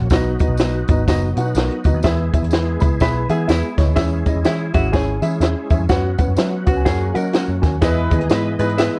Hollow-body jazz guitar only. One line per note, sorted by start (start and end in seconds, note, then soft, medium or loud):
3.02 3.29 B4 medium
3.31 3.48 G#4 medium
3.50 3.95 E4 medium
4.46 4.73 E4 medium
4.74 4.92 F#4 medium
4.93 5.67 G#4 medium
6.68 6.85 F#4 medium
6.85 7.15 G#4 medium
7.15 7.79 A#4 medium